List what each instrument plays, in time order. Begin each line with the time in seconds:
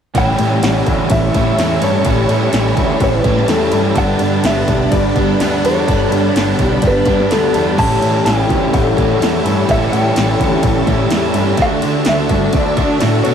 0.15 picked electric bass A1, overdriven electric guitar A2 E3 G3 C#4 E4, distorted electric guitar A2 E3 A3, twelve-string acoustic guitar G3, string machine G4 E5 A5 C#6, clean electric guitar G5, kick, ride
0.38 picked electric bass A2, distorted electric guitar E3 A3, twelve-string acoustic guitar G3, overdriven electric guitar G3 C#4 E4, ride
0.62 picked electric bass A1, overdriven electric guitar E3 G3 C#4 E4, twelve-string acoustic guitar C#4, clean electric guitar F#5, snare, ride
0.86 picked electric bass D2, distorted electric guitar E3 A3, twelve-string acoustic guitar E4, kick, ride
1.10 picked electric bass A1, distorted electric guitar A2 E3 A3, twelve-string acoustic guitar C#4, clean electric guitar E5, kick, ride
1.33 picked electric bass A2, distorted electric guitar E3 A3, twelve-string acoustic guitar G3, overdriven electric guitar G3 C#4 E4, kick, ride
1.57 picked electric bass E2, distorted electric guitar A2 E3 A3, overdriven electric guitar A2 E3 G3 C#4 E4, twelve-string acoustic guitar C#4, snare, ride
1.79 picked electric bass G2, distorted electric guitar E3 A3, overdriven electric guitar C#4 E4, twelve-string acoustic guitar A4, ride
1.84 overdriven electric guitar A2 E3 G3, clean electric guitar C#5
2.03 picked electric bass A1, distorted electric guitar A2 E3 A3, overdriven electric guitar A2 E3 G3 C#4, twelve-string acoustic guitar G3, kick, ride
2.07 overdriven electric guitar E4
2.28 picked electric bass A2, distorted electric guitar E3 A3, twelve-string acoustic guitar G3, overdriven electric guitar C#4 E4, ride
2.32 overdriven electric guitar G3
2.53 picked electric bass A1, overdriven electric guitar E3 G3 C#4 E4, twelve-string acoustic guitar C#4, snare, ride
2.76 picked electric bass D2, distorted electric guitar E3 A3, twelve-string acoustic guitar E4, kick, ride
3.00 picked electric bass A1, distorted electric guitar A2 E3 A3, twelve-string acoustic guitar C#4, kick, ride
3.04 clean electric guitar B4
3.23 picked electric bass A2, distorted electric guitar E3 A3, twelve-string acoustic guitar G3, overdriven electric guitar G3 C#4 E4, kick, ride
3.38 snare
3.48 picked electric bass E2, overdriven electric guitar A2 E3 G3 C#4 E4, distorted electric guitar A2 E3 A3, clean electric guitar A4, snare, ride
3.72 picked electric bass G2, overdriven electric guitar A2 E3 G3 C#4 E4, distorted electric guitar E3 A3, twelve-string acoustic guitar A4, ride
3.95 picked electric bass G1, distorted electric guitar G2 D3 G3, overdriven electric guitar G2 D3 G3 B3 D4, string machine F#5 B5, clean electric guitar F#5, kick, ride
4.19 picked electric bass G2, distorted electric guitar D3 G3, overdriven electric guitar G3 B3 D4, ride
4.43 picked electric bass G1, overdriven electric guitar D3 G3 B3 D4, twelve-string acoustic guitar B3, clean electric guitar E5, snare, ride
4.68 picked electric bass B1, distorted electric guitar D3 G3, twelve-string acoustic guitar D4, kick, ride
4.91 picked electric bass G1, distorted electric guitar G2 D3 G3, twelve-string acoustic guitar B3, clean electric guitar D5, kick, ride
5.15 picked electric bass G2, distorted electric guitar D3 G3, overdriven electric guitar G3 B3 D4, kick, ride
5.39 picked electric bass D2, distorted electric guitar G2 D3 G3, overdriven electric guitar G2 D3 G3 B3 D4, twelve-string acoustic guitar B3, snare, ride
5.64 picked electric bass E2, overdriven electric guitar G2 D3 G3 B3 D4, distorted electric guitar D3 G3, twelve-string acoustic guitar A4, clean electric guitar C#5, ride
5.87 picked electric bass G1, distorted electric guitar G2 D3 G3, overdriven electric guitar G2 D3 G3 B3 D4, kick, ride
6.11 picked electric bass G2, distorted electric guitar G3, overdriven electric guitar B3 D4, ride
6.15 distorted electric guitar D3, overdriven electric guitar G3
6.35 picked electric bass G1, overdriven electric guitar D3 G3 B3 D4, twelve-string acoustic guitar B3, snare, ride
6.59 picked electric bass B1, distorted electric guitar D3 G3, twelve-string acoustic guitar D4, kick, ride
6.82 picked electric bass G1, distorted electric guitar G2 D3, twelve-string acoustic guitar B3, kick, ride
6.86 distorted electric guitar G3, clean electric guitar B4
7.05 picked electric bass G2, distorted electric guitar G3, overdriven electric guitar G3 B3 D4, kick, ride
7.10 distorted electric guitar D3
7.20 snare
7.31 picked electric bass D2, overdriven electric guitar G2 D3 G3 B3 D4, distorted electric guitar G2 D3 G3, twelve-string acoustic guitar B3, clean electric guitar A4, snare, ride
7.53 picked electric bass E2, overdriven electric guitar G2 D3 G3 B3 D4, distorted electric guitar D3 G3, twelve-string acoustic guitar A4, ride
7.77 picked electric bass A1, distorted electric guitar A2 E3, overdriven electric guitar A2 E3 G3 C#4 E4, twelve-string acoustic guitar E3, string machine E5 A5 C#6, clean electric guitar A5, kick, crash
7.81 distorted electric guitar A3
8.01 picked electric bass A2, twelve-string acoustic guitar E3, distorted electric guitar E3 A3, overdriven electric guitar G3 C#4 E4, ride
8.25 picked electric bass A1, overdriven electric guitar E3 G3 C#4 E4, twelve-string acoustic guitar A3, clean electric guitar G5, snare, ride
8.48 picked electric bass D2, distorted electric guitar E3 A3, twelve-string acoustic guitar C#4, kick, ride
8.73 picked electric bass A1, distorted electric guitar A2 E3 A3, twelve-string acoustic guitar A3, clean electric guitar F#5, kick, ride
8.96 picked electric bass A2, twelve-string acoustic guitar E3, distorted electric guitar E3 A3, overdriven electric guitar G3 C#4 E4, kick, ride
9.12 snare
9.19 picked electric bass E2, distorted electric guitar A2 E3 A3, overdriven electric guitar A2 E3 G3 C#4 E4, twelve-string acoustic guitar A3, ride
9.23 snare
9.43 picked electric bass G2, overdriven electric guitar A2 E3 G3 C#4 E4, distorted electric guitar E3 A3, twelve-string acoustic guitar G4, ride
9.66 picked electric bass A1, distorted electric guitar A2 E3 A3, overdriven electric guitar A2 E3 G3 C#4 E4, twelve-string acoustic guitar E3, kick, ride
9.71 clean electric guitar E5
9.91 picked electric bass A2, twelve-string acoustic guitar E3, distorted electric guitar E3 A3, overdriven electric guitar G3 C#4 E4, clean electric guitar G5, ride
10.15 picked electric bass A1, overdriven electric guitar E3 G3 C#4 E4, twelve-string acoustic guitar A3, snare, ride
10.38 picked electric bass D2, distorted electric guitar E3 A3, twelve-string acoustic guitar C#4, kick, ride
10.61 picked electric bass A1, distorted electric guitar A2 E3 A3, twelve-string acoustic guitar A3, kick, ride
10.83 picked electric bass A2, distorted electric guitar A3, clean electric guitar F#5, kick, ride
10.87 twelve-string acoustic guitar E3, distorted electric guitar E3, overdriven electric guitar G3 C#4 E4
11.09 picked electric bass E2, distorted electric guitar A2 E3 A3, overdriven electric guitar A2 E3 G3 C#4, twelve-string acoustic guitar A3, snare, ride
11.13 overdriven electric guitar E4
11.33 picked electric bass G2, distorted electric guitar E3 A3, overdriven electric guitar E3 C#4 E4, twelve-string acoustic guitar G4, ride
11.37 overdriven electric guitar A2 G3
11.56 picked electric bass D2, distorted electric guitar D3 A3 D4, overdriven electric guitar D3 A3 D4 F#4, twelve-string acoustic guitar E3, string machine F#4 A5 C#6, kick, ride
11.62 clean electric guitar F#5
11.80 picked electric bass D3, twelve-string acoustic guitar E3, distorted electric guitar A3 D4, overdriven electric guitar D4 F#4, ride
11.85 overdriven electric guitar A3
12.05 picked electric bass D2, overdriven electric guitar D3 A3 D4 F#4, twelve-string acoustic guitar A3, snare, ride
12.09 clean electric guitar E5
12.28 picked electric bass G2, distorted electric guitar A3 D4, kick, ride
12.52 picked electric bass D2, distorted electric guitar D3 A3 D4, twelve-string acoustic guitar A3, clean electric guitar D5, kick, ride
12.76 picked electric bass D3, twelve-string acoustic guitar E3, overdriven electric guitar A3 D4 F#4, distorted electric guitar A3 D4, kick, ride
13.00 picked electric bass A2, distorted electric guitar D3 A3 D4, overdriven electric guitar D3 A3 D4 F#4, twelve-string acoustic guitar A3, snare, ride
13.24 picked electric bass B2, overdriven electric guitar D3 A3 D4 F#4, distorted electric guitar A3 D4, twelve-string acoustic guitar F#4, clean electric guitar C#5, ride